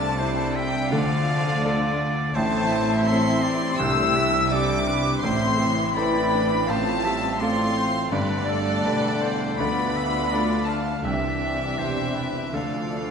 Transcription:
Already playing: C2 C3 G3 A3 C4 D4 E4 F4 D5 A5
0.19 D4 E4 C5
0.44 E4
0.55 G3 E5 G5
0.68 D4
0.91 D2 D3 F3 A3 F4 D5 F5
1.16 A3
1.42 F4
1.65 D4 F4 A4
1.90 F4
2.13 D4
2.35 A1 A2 A3 C4 E4 C5 E5 A5
2.61 E3
2.84 E4
3.07 C4 E4 A4 E5 C6
3.32 E4
3.43 G4 D5
3.78 C2 C3 A3 D4 E4 C5 E5 E6
4.04 G3
4.15 G3 E5
4.28 D4
4.51 G3 C4 D4 E4 G4 A4 D6
4.76 D4
4.88 B4
5.23 A1 A2 A3 C4 E4 C5 E5 C6
5.49 E3
5.60 E3
5.73 E4
5.95 E3 C4 E4 A4 B4 D5 G5 B5
6.21 E4
6.33 D4
6.44 C4
6.67 A1 A2 F3 A3 C4 F4 C5 F5 A5
6.93 A3
7.05 G3 E5
7.17 F4
7.40 A3 C4 F4 A4 D5 F5 C6
7.64 F4
7.77 C5
7.89 C4
8.11 G1 G2 D3 A3 D4 A4 B4 D5
8.37 D3
8.49 A4
8.61 G4
8.85 E1 E2 D4 G4 A4 B4
9.10 G4
9.22 C5
9.35 D4
9.58 D2 D3 A3 B3 D4 F4 D5 B5
9.84 A3
9.97 E5
10.08 F4
10.32 D4 F4 A4 D5
10.56 F4
10.68 A3 F5 A5
10.81 D4
11.04 C2 C3 E3 C4 D4 G4 D5 E5
11.29 G3
11.54 G4
11.78 E1 E2 C4 D4 G4 C5
12.03 G4
12.15 B4
12.28 D4
12.53 D2 D3 F3 A3 D4 F4 A4 D5 F5
12.79 A3
13.05 F4

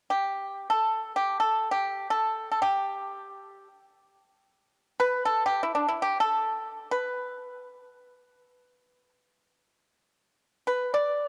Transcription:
0.10 G4
0.70 A4
1.16 G4
1.40 A4
1.71 G4
2.10 A4
2.51 A4
2.62 G4
5.00 B4
5.26 A4
5.46 G4
5.63 E4
5.75 D4
5.89 E4
6.02 G4
6.20 A4
6.91 B4
10.67 B4
10.94 D5

